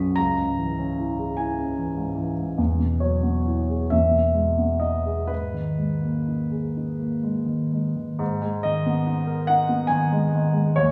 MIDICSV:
0, 0, Header, 1, 2, 480
1, 0, Start_track
1, 0, Key_signature, 5, "minor"
1, 0, Tempo, 808625
1, 91, Time_signature, 6, 3, 24, 8
1, 1534, Tempo, 890208
1, 2494, Tempo, 960000
1, 4414, Tempo, 847458
1, 5950, End_track
2, 0, Start_track
2, 0, Title_t, "Grand piano"
2, 0, Program_c, 0, 0
2, 0, Control_c, 0, 64, 127
2, 0, Note_on_c, 0, 35, 52
2, 0, Note_on_c, 0, 42, 41
2, 0, Note_on_c, 0, 54, 40
2, 0, Note_on_c, 0, 61, 39
2, 0, Note_on_c, 0, 63, 41
2, 0, Note_on_c, 0, 71, 38
2, 0, Note_on_c, 0, 78, 34
2, 0, Note_on_c, 0, 83, 82
2, 0, Note_on_c, 0, 85, 36
2, 0, Note_on_c, 0, 87, 33
2, 0, Note_on_c, 0, 95, 37
2, 72, Note_off_c, 0, 78, 0
2, 77, Note_off_c, 0, 35, 0
2, 81, Note_off_c, 0, 85, 0
2, 89, Note_off_c, 0, 87, 0
2, 93, Note_on_c, 0, 82, 88
2, 97, Note_off_c, 0, 42, 0
2, 97, Note_off_c, 0, 95, 0
2, 98, Note_off_c, 0, 83, 0
2, 100, Control_c, 0, 64, 0
2, 102, Note_on_c, 0, 37, 54
2, 104, Note_off_c, 0, 54, 0
2, 106, Note_off_c, 0, 61, 0
2, 107, Note_off_c, 0, 63, 0
2, 107, Note_off_c, 0, 71, 0
2, 205, Control_c, 0, 64, 127
2, 226, Note_on_c, 0, 44, 40
2, 343, Note_on_c, 0, 52, 40
2, 408, Note_off_c, 0, 44, 0
2, 465, Note_on_c, 0, 61, 42
2, 527, Note_off_c, 0, 52, 0
2, 583, Note_on_c, 0, 64, 41
2, 647, Note_off_c, 0, 61, 0
2, 703, Note_on_c, 0, 68, 40
2, 765, Note_off_c, 0, 64, 0
2, 805, Note_off_c, 0, 82, 0
2, 811, Note_on_c, 0, 80, 68
2, 818, Note_on_c, 0, 64, 41
2, 883, Note_off_c, 0, 68, 0
2, 941, Note_on_c, 0, 61, 39
2, 999, Note_off_c, 0, 64, 0
2, 1043, Note_off_c, 0, 80, 0
2, 1050, Note_on_c, 0, 52, 40
2, 1120, Note_off_c, 0, 61, 0
2, 1162, Note_on_c, 0, 44, 42
2, 1237, Note_off_c, 0, 52, 0
2, 1275, Note_on_c, 0, 52, 43
2, 1358, Note_off_c, 0, 44, 0
2, 1407, Note_on_c, 0, 44, 39
2, 1480, Note_off_c, 0, 52, 0
2, 1516, Note_off_c, 0, 37, 0
2, 1531, Note_on_c, 0, 40, 57
2, 1535, Note_off_c, 0, 44, 0
2, 1545, Control_c, 0, 64, 0
2, 1640, Control_c, 0, 64, 127
2, 1648, Note_on_c, 0, 47, 39
2, 1760, Note_on_c, 0, 73, 64
2, 1769, Note_on_c, 0, 54, 36
2, 1843, Note_off_c, 0, 47, 0
2, 1882, Note_on_c, 0, 59, 39
2, 1964, Note_off_c, 0, 54, 0
2, 2004, Note_on_c, 0, 64, 38
2, 2081, Note_off_c, 0, 59, 0
2, 2131, Note_on_c, 0, 68, 39
2, 2202, Note_off_c, 0, 64, 0
2, 2232, Note_off_c, 0, 40, 0
2, 2245, Note_on_c, 0, 76, 72
2, 2248, Note_off_c, 0, 73, 0
2, 2251, Note_on_c, 0, 40, 48
2, 2253, Note_off_c, 0, 68, 0
2, 2265, Control_c, 0, 64, 0
2, 2357, Note_on_c, 0, 47, 34
2, 2376, Control_c, 0, 64, 127
2, 2482, Note_on_c, 0, 56, 38
2, 2555, Note_off_c, 0, 47, 0
2, 2602, Note_on_c, 0, 59, 35
2, 2672, Note_off_c, 0, 56, 0
2, 2710, Note_on_c, 0, 75, 65
2, 2714, Note_on_c, 0, 63, 41
2, 2720, Note_off_c, 0, 76, 0
2, 2793, Note_off_c, 0, 59, 0
2, 2840, Note_on_c, 0, 68, 37
2, 2911, Note_off_c, 0, 63, 0
2, 2944, Note_off_c, 0, 40, 0
2, 2949, Note_on_c, 0, 71, 63
2, 2958, Note_off_c, 0, 75, 0
2, 2960, Note_on_c, 0, 44, 43
2, 2964, Note_off_c, 0, 68, 0
2, 2976, Control_c, 0, 64, 0
2, 3081, Note_on_c, 0, 51, 36
2, 3084, Control_c, 0, 64, 127
2, 3204, Note_on_c, 0, 56, 36
2, 3281, Note_off_c, 0, 51, 0
2, 3319, Note_on_c, 0, 58, 34
2, 3403, Note_off_c, 0, 56, 0
2, 3452, Note_on_c, 0, 63, 33
2, 3521, Note_off_c, 0, 58, 0
2, 3567, Note_on_c, 0, 68, 33
2, 3646, Note_off_c, 0, 63, 0
2, 3696, Note_on_c, 0, 63, 34
2, 3762, Note_off_c, 0, 68, 0
2, 3808, Note_on_c, 0, 58, 32
2, 3886, Note_off_c, 0, 63, 0
2, 3929, Note_on_c, 0, 56, 33
2, 4004, Note_off_c, 0, 58, 0
2, 4042, Note_on_c, 0, 51, 32
2, 4128, Note_off_c, 0, 56, 0
2, 4172, Note_off_c, 0, 71, 0
2, 4174, Note_on_c, 0, 56, 34
2, 4246, Note_off_c, 0, 51, 0
2, 4293, Note_on_c, 0, 51, 30
2, 4366, Note_off_c, 0, 56, 0
2, 4390, Note_off_c, 0, 44, 0
2, 4406, Note_on_c, 0, 44, 54
2, 4409, Note_off_c, 0, 51, 0
2, 4425, Control_c, 0, 64, 0
2, 4523, Control_c, 0, 64, 127
2, 4535, Note_on_c, 0, 56, 40
2, 4656, Note_on_c, 0, 75, 68
2, 4666, Note_on_c, 0, 51, 38
2, 4732, Note_off_c, 0, 56, 0
2, 4786, Note_on_c, 0, 59, 36
2, 4858, Note_off_c, 0, 51, 0
2, 4902, Note_on_c, 0, 63, 42
2, 4978, Note_off_c, 0, 59, 0
2, 5016, Note_on_c, 0, 70, 38
2, 5096, Note_off_c, 0, 63, 0
2, 5132, Note_on_c, 0, 78, 78
2, 5142, Note_off_c, 0, 75, 0
2, 5143, Note_on_c, 0, 63, 43
2, 5211, Note_off_c, 0, 70, 0
2, 5254, Note_on_c, 0, 59, 39
2, 5332, Note_off_c, 0, 63, 0
2, 5359, Note_on_c, 0, 80, 72
2, 5369, Note_on_c, 0, 51, 42
2, 5374, Note_off_c, 0, 78, 0
2, 5446, Note_off_c, 0, 59, 0
2, 5499, Note_on_c, 0, 56, 43
2, 5563, Note_off_c, 0, 51, 0
2, 5629, Note_on_c, 0, 51, 38
2, 5687, Note_off_c, 0, 56, 0
2, 5731, Note_on_c, 0, 56, 37
2, 5812, Note_off_c, 0, 51, 0
2, 5827, Note_off_c, 0, 44, 0
2, 5843, Note_off_c, 0, 80, 0
2, 5852, Note_off_c, 0, 56, 0
2, 5860, Note_on_c, 0, 73, 72
2, 5863, Control_c, 0, 64, 0
2, 5868, Note_on_c, 0, 39, 54
2, 5950, Note_off_c, 0, 39, 0
2, 5950, Note_off_c, 0, 73, 0
2, 5950, End_track
0, 0, End_of_file